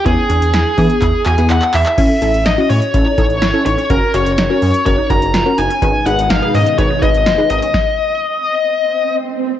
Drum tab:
CC |----------------|x---------------|----------------|----------------|
HH |x-xxx-oxx-xxx-ox|x-xxx-oxx-xxx-xx|x-xxx-oxx-xxx-xx|x-xxx-oxx-xxx-xx|
CP |--------x-x-xxxx|----------------|----------------|----------------|
SD |----o-----------|----o-------o---|----o-------o---|----o-------o---|
BD |o-----o-o-------|o-------o-o-----|o-------o-o-----|o-------o-o-----|

CC |----------------|
HH |----------------|
CP |----------------|
SD |o---------------|
BD |o---------------|